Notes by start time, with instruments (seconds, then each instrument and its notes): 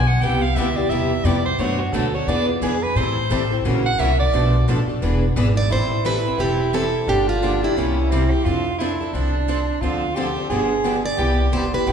Already playing: upright bass B1
0.07 soprano saxophone F#5
0.21 upright bass C2, steel-string acoustic guitar C3 G3 B3 E4 G4, soprano saxophone G5
0.42 soprano saxophone F5
0.55 upright bass D2, steel-string acoustic guitar C3 G3 B3 E4 G4, soprano saxophone E5
0.76 steel-string acoustic guitar B3 E4 G4, soprano saxophone D5
0.89 upright bass E2, steel-string acoustic guitar C3 G3 B3 E4 G4, soprano saxophone E5
1.24 upright bass F2, steel-string acoustic guitar C3 G3 B3 E4 G4, soprano saxophone D5
1.45 soprano saxophone C5
1.58 upright bass F#2, steel-string acoustic guitar B2 F#3 A3 D4 F#4 B4, soprano saxophone C#5
1.79 soprano saxophone F#4
1.92 upright bass D2, steel-string acoustic guitar B2 F#3 A3 D4 F#4 B4, soprano saxophone A4
2.14 steel-string acoustic guitar A3 D4 F#4, soprano saxophone C#5
2.27 upright bass E2, steel-string acoustic guitar E3 B3 D4 G#4 B4, soprano saxophone D5
2.48 soprano saxophone F4
2.61 upright bass F2, steel-string acoustic guitar E3 B3 D4 G#4 B4, soprano saxophone G#4
2.83 soprano saxophone B4
2.95 upright bass A2, steel-string acoustic guitar E3 G3 C4 E4 A4, soprano saxophone C5
3.30 upright bass A1, steel-string acoustic guitar E3 G3 C4 E4 A4
3.51 steel-string acoustic guitar C4 E4 A4
3.64 upright bass A#1, steel-string acoustic guitar C#3 E3 F#3 A#3 C#4 E4 F#4 A#4
3.86 soprano saxophone F#5
3.98 upright bass C2, steel-string acoustic guitar C#3 E3 F#3 A#3 C#4 E4 F#4 A#4, soprano saxophone E5
4.20 soprano saxophone D5
4.33 upright bass B1, steel-string acoustic guitar B2 F3 A3 D4 A4 B4
4.67 upright bass A1, steel-string acoustic guitar B2 F3 A3 D4 A4 B4
4.88 steel-string acoustic guitar A3 D4 A4, muted upright bass stroke
5.01 upright bass E1, steel-string acoustic guitar E3 B3 D4 G#4 B4
5.36 upright bass G#1, steel-string acoustic guitar E3 B3 D4 G#4 B4
5.57 steel-string acoustic guitar D5
5.70 upright bass A1, steel-string acoustic guitar E3 G3 C4 E4 A4 C5, soprano saxophone E4
6.05 steel-string acoustic guitar E3 G3 C4 E4 A4 B4
6.25 steel-string acoustic guitar C4 E4 A4
6.38 upright bass E1, steel-string acoustic guitar E3 G3 C4 E4 G4 A4
6.73 steel-string acoustic guitar E3 G3 C4 E4 A4
7.07 upright bass G1, steel-string acoustic guitar D3 F3 A#3 D4 G4, soprano saxophone D4
7.29 steel-string acoustic guitar F4
7.43 steel-string acoustic guitar D3 F3 A#3 D4 G4
7.63 steel-string acoustic guitar A#3 D4 E4 G4
7.76 upright bass C2, steel-string acoustic guitar C3 G3 A#3 E4 G4, soprano saxophone C#4
8.11 steel-string acoustic guitar C3 G3 A#3 E4 G4, soprano saxophone C4
8.30 soprano saxophone G4
8.44 upright bass F2, steel-string acoustic guitar F3 C4 D4 A4, soprano saxophone F4
8.78 steel-string acoustic guitar F3 C4 D4 A4, soprano saxophone E4
9.00 steel-string acoustic guitar C4 D4 A4
9.13 upright bass C2, steel-string acoustic guitar F3 C4 D4 A4, soprano saxophone D4
9.48 steel-string acoustic guitar F3 C4 D4 A4
9.81 upright bass D2, steel-string acoustic guitar D3 F3 C4 D4 A4, soprano saxophone F4
10.15 steel-string acoustic guitar D3 F3 C4 D4 A4, soprano saxophone G4
10.36 steel-string acoustic guitar C4 D4 A4
10.49 upright bass G1, steel-string acoustic guitar D3 F3 B3 D4 G4, soprano saxophone G#4
10.84 steel-string acoustic guitar D3 F3 B3 D4 G4
11.05 steel-string acoustic guitar D5
11.18 upright bass C2, steel-string acoustic guitar C3 G3 B3 E4 G4, soprano saxophone G4
11.52 upright bass F1, steel-string acoustic guitar C3 G3 B3 E4 G4 C5
11.73 steel-string acoustic guitar B3 E4 G4 B4
11.86 upright bass G1, steel-string acoustic guitar C3 G3 B3 E4 G4, soprano saxophone G4